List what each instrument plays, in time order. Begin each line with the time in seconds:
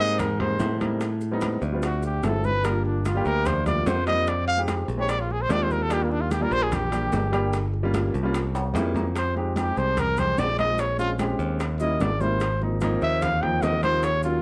Already playing: grand piano G3 A#3 C4 D#4
0.00 picked electric bass G#2, trumpet D#5, high bongo
0.19 trumpet A#4, high bongo, high conga, low conga, high timbale, maracas
0.39 grand piano G3 A#3 C4 D#4, trumpet C5, high bongo, high conga, low conga, high timbale
0.60 picked electric bass A2, high bongo, low bongo, high conga, low timbale, maracas
0.80 grand piano G3 A#3 C4 D#4, high conga, high timbale, maracas
1.01 high bongo, high conga, high timbale, maracas
1.21 high bongo, high conga, maracas
1.32 grand piano G3 B3 C4 D#4
1.41 high bongo, high conga, high timbale, low timbale, maracas
1.62 picked electric bass D2, high bongo, maracas
1.72 grand piano G3 B3 C4 F4
1.82 trumpet F#4, high bongo, high conga, high timbale, maracas
2.03 trumpet G4, high bongo, high conga, maracas
2.23 picked electric bass G1, grand piano F#3 A3 C4 E4, trumpet A4, high bongo, low bongo, high conga, high timbale, low timbale, maracas
2.44 trumpet B4, high conga, maracas
2.64 grand piano G3 A#3 D4 F4, trumpet A#4, high bongo, high conga, high timbale, maracas
2.85 trumpet D4, high bongo, high conga
3.05 trumpet F4, high bongo, high conga, high timbale, low timbale, maracas
3.15 grand piano G3 A#3 D4 G4
3.25 picked electric bass D2, trumpet A#4, high bongo, maracas
3.46 trumpet C5, high bongo, high conga, low conga, high timbale, maracas
3.66 grand piano G3 A#3 D4 F4, trumpet D5, high bongo, high conga, low conga, high timbale, maracas
3.86 picked electric bass F2, trumpet C5, high bongo, low bongo, high conga, low timbale, maracas
4.06 grand piano G3 A#3 D4 F4, trumpet D#5, high timbale, maracas
4.27 trumpet D5, high bongo, high conga, high timbale, maracas
4.48 trumpet F5, high bongo, high conga
4.57 grand piano G#3 C4 D#4 G4
4.68 high bongo, high conga, high timbale, low timbale, maracas
4.88 picked electric bass A#1, high bongo, maracas
4.97 grand piano G#3 C4 D#4 G4, trumpet C#5
5.09 trumpet D5, high bongo, high conga, high timbale, maracas
5.21 trumpet F4
5.30 trumpet G#4, high bongo, high conga
5.42 trumpet C5
5.48 picked electric bass D#2, grand piano G#3 C4 D4 F4, trumpet D5, high bongo, low bongo, high conga, high timbale, low timbale, maracas
5.63 trumpet C5
5.70 trumpet A#4, high conga, maracas
5.82 trumpet A4
5.89 grand piano G3 A#3 D4 F4, trumpet G4, high bongo, high timbale, maracas
6.03 trumpet A#3
6.11 trumpet D4, high bongo, high conga
6.21 trumpet F4
6.31 trumpet G4, high bongo, high conga, high timbale, low timbale, maracas
6.41 grand piano G3 A#3 D4 F4, trumpet A#4
6.51 picked electric bass A#1, trumpet C5, high bongo, maracas
6.63 trumpet G#4
6.72 trumpet G4, high bongo, high conga, low conga, high timbale, maracas
6.91 grand piano G3 A#3 D4 G4, high bongo, high conga, high timbale, maracas
7.12 picked electric bass G1, high bongo, low bongo, high conga, low timbale, maracas
7.32 grand piano G3 A#3 D4 G4, high timbale, maracas
7.53 high bongo, high conga, high timbale, maracas
7.74 high bongo, high conga
7.83 grand piano G3 A#3 C#4 F4
7.94 high bongo, high conga, high timbale, low timbale, maracas
8.14 picked electric bass C2, high bongo, maracas
8.23 grand piano G3 A#3 C#4 F4
8.34 high bongo, high conga, high timbale, maracas
8.54 grand piano C#5, high bongo, high conga, high timbale, maracas
8.65 grand piano F5
8.74 picked electric bass F2, grand piano G3 A#3 C#4 E4 G5, high bongo, low bongo, high conga, low timbale, maracas
8.95 grand piano A#5, high conga, low timbale, maracas
9.16 trumpet C5, high bongo, high conga, high timbale, maracas
9.36 grand piano G#3 C4 D#4 G4, trumpet D#4, high bongo, high conga
9.56 grand piano G#3 C4 D#4 G4, trumpet G4, high bongo, high conga, high timbale, low timbale, maracas
9.77 picked electric bass C2, trumpet C5, high bongo, maracas
9.97 trumpet A#4, high bongo, high conga, low conga, high timbale, maracas
10.17 grand piano G#3 C4 D#4 G4, trumpet C5, high bongo, high conga, low conga, high timbale, maracas
10.38 picked electric bass A#1, trumpet D5, high bongo, low bongo, high conga, low timbale, maracas
10.58 grand piano G#3 C4 D#4 F4, trumpet D#5, high conga, high timbale, maracas
10.78 trumpet C#5, high bongo, high conga, high timbale, maracas
10.98 grand piano G#3 C4 C#4 F4, trumpet F4, high bongo, high conga, maracas
11.19 grand piano G#3 C4 C#4 G4, high bongo, high conga, high timbale, low timbale, maracas
11.39 picked electric bass D#2, high bongo, maracas
11.60 high bongo, high conga, high timbale, maracas
11.80 grand piano G3 A#3 C#4 E4, trumpet D#5, high bongo, high conga, maracas
12.00 picked electric bass G#1, trumpet D5, high bongo, low bongo, high conga, high timbale, low timbale, maracas
12.20 grand piano G3 A#3 C#4 E4, trumpet C5, high conga, maracas
12.40 high bongo, high conga, high timbale, maracas
12.61 grand piano F3 A#3 C4 D#4, high bongo, high conga
12.81 grand piano F3 A#3 C4 D#4, high bongo, high conga, high timbale, low timbale, maracas
13.02 picked electric bass D#2, trumpet E5, high bongo, maracas
13.22 trumpet F5, high bongo, high conga, low conga, high timbale, maracas
13.42 grand piano F3 A#3 C4 D#4, trumpet G5, high bongo, high conga, low conga, high timbale
13.62 picked electric bass D#2, trumpet D#5, high bongo, low bongo, high conga, low timbale, maracas
13.83 grand piano F3 A#3 C4 D#4, trumpet C5, high conga, high timbale, maracas
14.03 trumpet C#5, high bongo, high conga, high timbale, maracas
14.23 grand piano F#3 A#3 C#4 F4, trumpet F4, high bongo, maracas